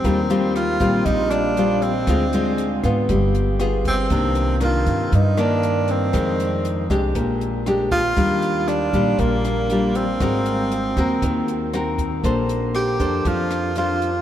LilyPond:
<<
  \new Staff \with { instrumentName = "Tenor saxophone" } { \time 4/4 \key ees \lydian \tempo 4 = 118 c'4 f'4 ees'8 d'4 c'8~ | c'4. r2 c'8~ | c'4 f'4 ees'8 d'4 c'8~ | c'4. r2 f'8~ |
f'4 d'4 bes4. c'8~ | c'2. r4 | r4 g'4 f'4 f'4 | }
  \new Staff \with { instrumentName = "Nylon-string guitar" } { \time 4/4 \key ees \lydian << { <g c' f'>8 <g c' f'>4 <g c' f'>4. <g c' f'>8 r8 | <aes c' f'>8 <aes c' f'>4 <ces' f'>4. <b f' aes'>4 | <ees bes d'>4 <ees bes d'>4 r8 <ees bes d'>4. | <ees aes c'>4. <aes d' g'>4. <aes d' g'>8 r8 |
<g d' f'>4. <g d' f'>4. <g d' f'>8 r8 | <c' ges' bes'>4 r8 <c' ges' bes'>4. <c' ges' bes'>4 | <d' a' c''>4. <d' a' c''>4. <d' a' c''>8 r8 | } \\ { ees2 bes,2 | d2 g2 | c2 g,2 | f,2 bes,2 |
ees2 bes,2 | aes2 ees2 | bes2 f2 | } >> }
  \new Staff \with { instrumentName = "Upright bass" } { \clef bass \time 4/4 \key ees \lydian ees,4. bes,,8 bes,,2 | d,4. aes,8 g,,2 | c,4. g,8 g,2 | f,4. c,8 bes,,2 |
ees,4. bes,,8 bes,,2 | aes,,4. ees,8 ees,2 | bes,,4. f,8 f,2 | }
  \new DrumStaff \with { instrumentName = "Drums" } \drummode { \time 4/4 <hh bd>8 hh8 <hh ss>8 <hh bd>8 <hh bd>8 <hh ss>8 hh8 hh8 | <hh bd ss>8 hh8 hh8 <hh bd ss>8 <hh bd>8 hh8 <hh ss>8 <hh bd>8 | <hh bd>8 hh8 <hh ss>8 <hh bd>8 <hh bd>8 <hh ss>8 hh8 hh8 | <hh bd ss>8 hh8 hh8 <hh bd ss>8 <hh bd>8 hh8 <hh ss>8 <hh bd>8 |
<hh bd>8 hh8 <hh ss>8 <hh bd>8 <hh bd>8 <hh ss>8 hh8 hh8 | <hh bd ss>8 hh8 hh8 <hh bd ss>8 <hh bd>8 hh8 <hh ss>8 <hh bd>8 | <hh bd>8 hh8 <hh ss>8 <hh bd>8 <hh bd>8 <hh ss>8 hh8 hh8 | }
>>